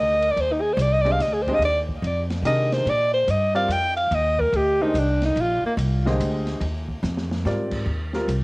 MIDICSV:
0, 0, Header, 1, 6, 480
1, 0, Start_track
1, 0, Tempo, 416667
1, 430, Time_signature, 3, 2, 24, 8
1, 9722, End_track
2, 0, Start_track
2, 0, Title_t, "Alto saxophone"
2, 0, Program_c, 0, 65
2, 0, Note_on_c, 0, 75, 118
2, 363, Note_on_c, 0, 74, 94
2, 380, Note_off_c, 0, 75, 0
2, 468, Note_on_c, 0, 72, 106
2, 485, Note_off_c, 0, 74, 0
2, 600, Note_on_c, 0, 63, 72
2, 617, Note_off_c, 0, 72, 0
2, 703, Note_on_c, 0, 68, 91
2, 720, Note_off_c, 0, 63, 0
2, 845, Note_on_c, 0, 72, 93
2, 863, Note_off_c, 0, 68, 0
2, 944, Note_on_c, 0, 74, 94
2, 961, Note_off_c, 0, 72, 0
2, 1066, Note_on_c, 0, 75, 112
2, 1083, Note_off_c, 0, 74, 0
2, 1172, Note_on_c, 0, 74, 106
2, 1189, Note_off_c, 0, 75, 0
2, 1291, Note_on_c, 0, 77, 100
2, 1308, Note_off_c, 0, 74, 0
2, 1405, Note_on_c, 0, 75, 92
2, 1423, Note_off_c, 0, 77, 0
2, 1539, Note_on_c, 0, 68, 83
2, 1556, Note_off_c, 0, 75, 0
2, 1639, Note_on_c, 0, 72, 88
2, 1657, Note_off_c, 0, 68, 0
2, 1780, Note_on_c, 0, 75, 106
2, 1797, Note_off_c, 0, 72, 0
2, 1867, Note_off_c, 0, 75, 0
2, 1904, Note_on_c, 0, 74, 105
2, 2079, Note_off_c, 0, 74, 0
2, 2843, Note_on_c, 0, 75, 104
2, 3150, Note_on_c, 0, 72, 108
2, 3167, Note_off_c, 0, 75, 0
2, 3335, Note_on_c, 0, 74, 123
2, 3352, Note_off_c, 0, 72, 0
2, 3606, Note_off_c, 0, 74, 0
2, 3613, Note_on_c, 0, 72, 100
2, 3809, Note_on_c, 0, 75, 91
2, 3826, Note_off_c, 0, 72, 0
2, 4096, Note_off_c, 0, 75, 0
2, 4103, Note_on_c, 0, 77, 103
2, 4288, Note_on_c, 0, 79, 111
2, 4306, Note_off_c, 0, 77, 0
2, 4565, Note_off_c, 0, 79, 0
2, 4572, Note_on_c, 0, 77, 93
2, 4776, Note_on_c, 0, 75, 103
2, 4794, Note_off_c, 0, 77, 0
2, 5073, Note_on_c, 0, 70, 94
2, 5091, Note_off_c, 0, 75, 0
2, 5255, Note_on_c, 0, 67, 96
2, 5272, Note_off_c, 0, 70, 0
2, 5554, Note_on_c, 0, 63, 98
2, 5571, Note_off_c, 0, 67, 0
2, 5750, Note_on_c, 0, 62, 84
2, 5767, Note_off_c, 0, 63, 0
2, 6039, Note_off_c, 0, 62, 0
2, 6052, Note_on_c, 0, 63, 90
2, 6234, Note_on_c, 0, 65, 101
2, 6252, Note_off_c, 0, 63, 0
2, 6514, Note_off_c, 0, 65, 0
2, 6521, Note_on_c, 0, 58, 82
2, 6616, Note_off_c, 0, 58, 0
2, 9722, End_track
3, 0, Start_track
3, 0, Title_t, "Grand piano"
3, 0, Program_c, 1, 0
3, 0, Note_on_c, 1, 51, 60
3, 0, Note_on_c, 1, 56, 59
3, 0, Note_on_c, 1, 62, 59
3, 0, Note_on_c, 1, 67, 51
3, 0, Note_on_c, 1, 70, 68
3, 322, Note_off_c, 1, 56, 0
3, 323, Note_off_c, 1, 51, 0
3, 327, Note_off_c, 1, 67, 0
3, 330, Note_off_c, 1, 62, 0
3, 332, Note_off_c, 1, 70, 0
3, 1205, Note_on_c, 1, 62, 62
3, 1206, Note_on_c, 1, 56, 68
3, 1207, Note_on_c, 1, 72, 64
3, 1213, Note_on_c, 1, 67, 64
3, 1214, Note_on_c, 1, 75, 83
3, 1365, Note_off_c, 1, 62, 0
3, 1366, Note_off_c, 1, 56, 0
3, 1367, Note_off_c, 1, 72, 0
3, 1369, Note_off_c, 1, 67, 0
3, 1370, Note_off_c, 1, 75, 0
3, 1705, Note_on_c, 1, 56, 76
3, 1709, Note_on_c, 1, 62, 73
3, 1709, Note_on_c, 1, 67, 70
3, 1714, Note_on_c, 1, 75, 77
3, 1719, Note_on_c, 1, 72, 70
3, 1856, Note_off_c, 1, 56, 0
3, 1857, Note_off_c, 1, 67, 0
3, 1858, Note_off_c, 1, 62, 0
3, 1860, Note_off_c, 1, 75, 0
3, 1862, Note_off_c, 1, 72, 0
3, 2817, Note_on_c, 1, 51, 69
3, 2824, Note_on_c, 1, 67, 62
3, 2824, Note_on_c, 1, 70, 71
3, 2825, Note_on_c, 1, 62, 61
3, 2826, Note_on_c, 1, 56, 61
3, 3304, Note_off_c, 1, 51, 0
3, 3307, Note_off_c, 1, 67, 0
3, 3307, Note_off_c, 1, 70, 0
3, 3308, Note_off_c, 1, 56, 0
3, 3308, Note_off_c, 1, 62, 0
3, 4081, Note_on_c, 1, 60, 61
3, 4085, Note_on_c, 1, 55, 71
3, 4086, Note_on_c, 1, 70, 64
3, 4089, Note_on_c, 1, 74, 89
3, 4092, Note_on_c, 1, 65, 61
3, 4244, Note_off_c, 1, 60, 0
3, 4246, Note_off_c, 1, 55, 0
3, 4246, Note_off_c, 1, 70, 0
3, 4248, Note_off_c, 1, 74, 0
3, 4249, Note_off_c, 1, 65, 0
3, 5541, Note_on_c, 1, 56, 61
3, 5543, Note_on_c, 1, 62, 63
3, 5547, Note_on_c, 1, 72, 70
3, 5550, Note_on_c, 1, 67, 70
3, 5550, Note_on_c, 1, 75, 72
3, 5694, Note_off_c, 1, 56, 0
3, 5695, Note_off_c, 1, 62, 0
3, 5696, Note_off_c, 1, 72, 0
3, 5698, Note_off_c, 1, 67, 0
3, 5698, Note_off_c, 1, 75, 0
3, 6974, Note_on_c, 1, 56, 76
3, 6985, Note_on_c, 1, 50, 77
3, 6986, Note_on_c, 1, 75, 89
3, 6988, Note_on_c, 1, 67, 66
3, 6989, Note_on_c, 1, 72, 73
3, 7592, Note_off_c, 1, 56, 0
3, 7598, Note_off_c, 1, 50, 0
3, 7598, Note_off_c, 1, 75, 0
3, 7599, Note_off_c, 1, 67, 0
3, 7600, Note_off_c, 1, 72, 0
3, 8590, Note_on_c, 1, 60, 58
3, 8592, Note_on_c, 1, 55, 66
3, 8598, Note_on_c, 1, 70, 54
3, 8601, Note_on_c, 1, 74, 68
3, 8602, Note_on_c, 1, 65, 58
3, 9069, Note_off_c, 1, 55, 0
3, 9069, Note_off_c, 1, 60, 0
3, 9073, Note_off_c, 1, 70, 0
3, 9074, Note_off_c, 1, 74, 0
3, 9075, Note_off_c, 1, 65, 0
3, 9378, Note_on_c, 1, 55, 67
3, 9382, Note_on_c, 1, 60, 58
3, 9386, Note_on_c, 1, 70, 80
3, 9391, Note_on_c, 1, 65, 63
3, 9531, Note_off_c, 1, 55, 0
3, 9533, Note_off_c, 1, 60, 0
3, 9535, Note_off_c, 1, 70, 0
3, 9537, Note_off_c, 1, 65, 0
3, 9722, End_track
4, 0, Start_track
4, 0, Title_t, "Upright bass"
4, 0, Program_c, 2, 32
4, 0, Note_on_c, 2, 38, 88
4, 401, Note_off_c, 2, 38, 0
4, 421, Note_on_c, 2, 39, 83
4, 879, Note_off_c, 2, 39, 0
4, 886, Note_on_c, 2, 36, 111
4, 1358, Note_off_c, 2, 36, 0
4, 1365, Note_on_c, 2, 38, 79
4, 1821, Note_off_c, 2, 38, 0
4, 1828, Note_on_c, 2, 39, 98
4, 2314, Note_off_c, 2, 39, 0
4, 2331, Note_on_c, 2, 41, 92
4, 2785, Note_off_c, 2, 41, 0
4, 2792, Note_on_c, 2, 48, 82
4, 3276, Note_off_c, 2, 48, 0
4, 3291, Note_on_c, 2, 46, 88
4, 3766, Note_off_c, 2, 46, 0
4, 3774, Note_on_c, 2, 43, 99
4, 4234, Note_off_c, 2, 43, 0
4, 4241, Note_on_c, 2, 41, 97
4, 4721, Note_off_c, 2, 41, 0
4, 4735, Note_on_c, 2, 39, 99
4, 5206, Note_off_c, 2, 39, 0
4, 5212, Note_on_c, 2, 38, 92
4, 5680, Note_off_c, 2, 38, 0
4, 5687, Note_on_c, 2, 36, 92
4, 6163, Note_off_c, 2, 36, 0
4, 6173, Note_on_c, 2, 34, 93
4, 6468, Note_off_c, 2, 34, 0
4, 6648, Note_on_c, 2, 36, 102
4, 7124, Note_off_c, 2, 36, 0
4, 7141, Note_on_c, 2, 38, 92
4, 7600, Note_off_c, 2, 38, 0
4, 7607, Note_on_c, 2, 39, 88
4, 8082, Note_off_c, 2, 39, 0
4, 8095, Note_on_c, 2, 41, 106
4, 8567, Note_off_c, 2, 41, 0
4, 8582, Note_on_c, 2, 44, 90
4, 9044, Note_off_c, 2, 44, 0
4, 9051, Note_on_c, 2, 39, 88
4, 9524, Note_off_c, 2, 39, 0
4, 9537, Note_on_c, 2, 36, 92
4, 9722, Note_off_c, 2, 36, 0
4, 9722, End_track
5, 0, Start_track
5, 0, Title_t, "Muted upright bass strokes"
5, 6490, Note_on_c, 9, 29, 40
5, 6605, Note_off_c, 9, 29, 0
5, 9722, End_track
6, 0, Start_track
6, 0, Title_t, "Drums"
6, 257, Note_on_c, 9, 51, 53
6, 372, Note_off_c, 9, 51, 0
6, 427, Note_on_c, 9, 51, 65
6, 542, Note_off_c, 9, 51, 0
6, 909, Note_on_c, 9, 44, 56
6, 909, Note_on_c, 9, 51, 69
6, 1025, Note_off_c, 9, 44, 0
6, 1025, Note_off_c, 9, 51, 0
6, 1223, Note_on_c, 9, 51, 46
6, 1338, Note_off_c, 9, 51, 0
6, 1386, Note_on_c, 9, 44, 53
6, 1386, Note_on_c, 9, 51, 72
6, 1387, Note_on_c, 9, 38, 44
6, 1502, Note_off_c, 9, 44, 0
6, 1502, Note_off_c, 9, 51, 0
6, 1503, Note_off_c, 9, 38, 0
6, 1695, Note_on_c, 9, 36, 64
6, 1701, Note_on_c, 9, 51, 50
6, 1810, Note_off_c, 9, 36, 0
6, 1816, Note_off_c, 9, 51, 0
6, 1869, Note_on_c, 9, 51, 66
6, 1984, Note_off_c, 9, 51, 0
6, 2176, Note_on_c, 9, 36, 67
6, 2291, Note_off_c, 9, 36, 0
6, 2351, Note_on_c, 9, 51, 65
6, 2466, Note_off_c, 9, 51, 0
6, 2654, Note_on_c, 9, 51, 51
6, 2655, Note_on_c, 9, 38, 57
6, 2769, Note_off_c, 9, 51, 0
6, 2770, Note_off_c, 9, 38, 0
6, 2825, Note_on_c, 9, 44, 68
6, 2825, Note_on_c, 9, 51, 80
6, 2940, Note_off_c, 9, 44, 0
6, 2940, Note_off_c, 9, 51, 0
6, 3137, Note_on_c, 9, 51, 50
6, 3138, Note_on_c, 9, 38, 53
6, 3252, Note_off_c, 9, 51, 0
6, 3253, Note_off_c, 9, 38, 0
6, 3306, Note_on_c, 9, 51, 66
6, 3421, Note_off_c, 9, 51, 0
6, 3777, Note_on_c, 9, 44, 58
6, 3777, Note_on_c, 9, 51, 60
6, 3892, Note_off_c, 9, 44, 0
6, 3892, Note_off_c, 9, 51, 0
6, 4096, Note_on_c, 9, 51, 47
6, 4211, Note_off_c, 9, 51, 0
6, 4267, Note_on_c, 9, 44, 66
6, 4267, Note_on_c, 9, 51, 83
6, 4383, Note_off_c, 9, 44, 0
6, 4383, Note_off_c, 9, 51, 0
6, 4573, Note_on_c, 9, 51, 48
6, 4688, Note_off_c, 9, 51, 0
6, 4742, Note_on_c, 9, 51, 67
6, 4857, Note_off_c, 9, 51, 0
6, 5056, Note_on_c, 9, 36, 64
6, 5171, Note_off_c, 9, 36, 0
6, 5224, Note_on_c, 9, 51, 58
6, 5339, Note_off_c, 9, 51, 0
6, 5702, Note_on_c, 9, 44, 66
6, 5702, Note_on_c, 9, 51, 78
6, 5818, Note_off_c, 9, 44, 0
6, 5818, Note_off_c, 9, 51, 0
6, 6010, Note_on_c, 9, 51, 54
6, 6011, Note_on_c, 9, 38, 52
6, 6125, Note_off_c, 9, 51, 0
6, 6126, Note_off_c, 9, 38, 0
6, 6185, Note_on_c, 9, 51, 66
6, 6301, Note_off_c, 9, 51, 0
6, 6664, Note_on_c, 9, 44, 51
6, 6664, Note_on_c, 9, 51, 73
6, 6779, Note_off_c, 9, 44, 0
6, 6779, Note_off_c, 9, 51, 0
6, 6982, Note_on_c, 9, 38, 46
6, 7097, Note_off_c, 9, 38, 0
6, 7148, Note_on_c, 9, 44, 59
6, 7148, Note_on_c, 9, 51, 84
6, 7264, Note_off_c, 9, 44, 0
6, 7264, Note_off_c, 9, 51, 0
6, 7451, Note_on_c, 9, 51, 50
6, 7452, Note_on_c, 9, 38, 37
6, 7566, Note_off_c, 9, 51, 0
6, 7567, Note_off_c, 9, 38, 0
6, 7616, Note_on_c, 9, 51, 65
6, 7732, Note_off_c, 9, 51, 0
6, 7931, Note_on_c, 9, 36, 55
6, 8047, Note_off_c, 9, 36, 0
6, 8104, Note_on_c, 9, 44, 65
6, 8105, Note_on_c, 9, 38, 48
6, 8219, Note_off_c, 9, 44, 0
6, 8220, Note_off_c, 9, 38, 0
6, 8263, Note_on_c, 9, 38, 73
6, 8378, Note_off_c, 9, 38, 0
6, 8425, Note_on_c, 9, 38, 90
6, 8540, Note_off_c, 9, 38, 0
6, 8583, Note_on_c, 9, 44, 53
6, 8584, Note_on_c, 9, 38, 59
6, 8698, Note_off_c, 9, 44, 0
6, 8699, Note_off_c, 9, 38, 0
6, 8885, Note_on_c, 9, 49, 76
6, 8889, Note_on_c, 9, 36, 78
6, 9000, Note_off_c, 9, 49, 0
6, 9005, Note_off_c, 9, 36, 0
6, 9369, Note_on_c, 9, 38, 51
6, 9484, Note_off_c, 9, 38, 0
6, 9545, Note_on_c, 9, 44, 49
6, 9545, Note_on_c, 9, 51, 72
6, 9660, Note_off_c, 9, 44, 0
6, 9660, Note_off_c, 9, 51, 0
6, 9722, End_track
0, 0, End_of_file